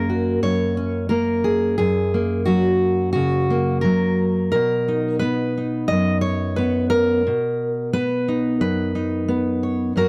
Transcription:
Already playing: F#2 A#3 C#4 A#4
0.10 F#4
0.42 F#2 C#5
0.77 C#4
1.09 A#3 A#4
1.44 G#4
1.78 F#2 G#4
2.14 A#3
2.45 F#3 F#4
3.13 C#3 F#4
3.50 A#3
3.81 F#3 A#4
4.52 B2 A#4
4.88 D#4
5.19 B3 B4
5.58 D#4
5.88 F#2 D#5
6.21 C#5
6.56 B3 B4
6.90 A#4
7.27 B2
7.93 B3 B4
8.28 D#4
8.61 F#2 B4
8.95 D#4
9.28 B3
9.63 C#5
9.96 F#2 A#3 F#4 A#4

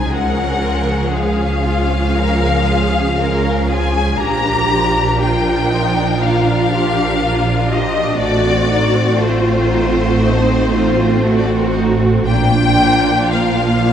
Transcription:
Already playing: D#4 G#5
0.08 C#2 F3 G#3 C#4 G#4 A#4 F#5
0.34 C#4
0.59 F4
0.85 C#4
1.11 G#3 G#4 F5
1.37 C#4
1.63 F4
1.88 C#4
2.14 G#3 A#4
2.40 C#4
2.65 F4 G#4
2.93 C#4
3.18 G#3 A#4
3.44 C#4
3.68 F4 G#4 G#5
3.93 C#4
4.19 A#1 F3 A#3 D4 G4 A#4 A#5
4.44 D4
4.70 F4
4.96 D4
5.19 A#3 F4 G5
5.45 D4
5.70 D#4 F4
5.96 D4
6.21 A#3 F4 F5
6.47 D4
6.71 F4 G4
6.98 D4
7.21 A#3 F4
7.47 D4
7.70 F4 G4 D#5
7.96 D4
8.19 A1 A3 C4 F#4 D5
8.44 C4
8.68 D#4
8.92 C4
9.17 A3 F4 C5
9.43 C4
9.69 D#4
9.95 C4
10.21 A3 D#4
10.46 C4
10.71 D#4 F4
10.97 C4
11.22 A3 F#4
11.38 D5
11.47 C4 C5
11.57 A#4
11.65 C5
11.74 D#4
12.01 C4
12.26 A#1 F3 A#3 D4 F4 G5
12.54 D4
12.81 A#3
13.07 D4
13.32 A#3 F4 F5
13.60 D4
13.84 A#3 D4

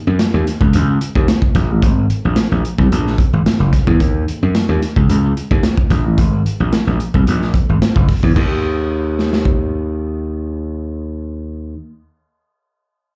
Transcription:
0.07 F#2
0.19 snare, closed hi-hat
0.34 D#2
0.46 snare, closed hi-hat
0.61 C#2, kick
0.73 C#2, closed hi-hat
1.01 closed hi-hat
1.15 D#2, kick
1.28 snare, closed hi-hat
1.42 kick
1.55 A#1, kick, snare, closed hi-hat
1.71 A1
1.82 G#1, kick, closed hi-hat
2.10 closed hi-hat
2.25 A#1
2.36 snare, closed hi-hat
2.52 A#1
2.65 closed hi-hat
2.78 C2, kick
2.92 A#1, closed hi-hat
3.07 snare
3.18 kick, closed hi-hat
3.33 G#1
3.46 muted slap bass stroke, snare, closed hi-hat
3.60 F#1
3.73 kick, snare, closed hi-hat
3.87 E2, kick
4.00 D#2, kick, closed hi-hat
4.28 closed hi-hat
4.43 F#2
4.55 snare, closed hi-hat
4.69 D#2
4.82 snare, closed hi-hat
4.96 C#2, kick
5.09 C#2, closed hi-hat
5.37 closed hi-hat
5.51 D#2, kick
5.63 snare, closed hi-hat
5.77 kick
5.90 A#1, kick, snare, closed hi-hat
6.05 A1
6.18 G#1, kick, closed hi-hat
6.46 closed hi-hat
6.60 A#1
6.73 snare, closed hi-hat
6.87 A#1
7.00 closed hi-hat
7.14 C2, kick
7.27 A#1, closed hi-hat
7.42 snare
7.54 kick, closed hi-hat
7.69 G#1
7.82 muted slap bass stroke, snare, closed hi-hat
7.96 F#1, kick
8.09 kick, snare, open hi-hat
8.23 E2, kick
8.36 D#2, kick, crash
9.19 snare
9.33 snare
9.45 kick

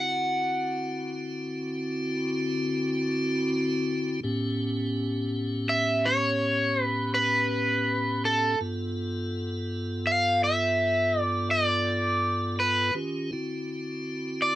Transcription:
Already playing: D3 C4 E4 F#4 F#5
4.23 A2 B3 C#4 G4
5.69 E5
6.05 C#5
6.83 B4
7.14 B4
8.25 A4
8.60 G2 B3 F4 A4
10.07 F5
10.44 E5
11.21 D5
11.51 D5
12.60 B4
12.94 D#3 C#4 F4 G4
13.32 D3 C4 E4 F#4
14.42 D5

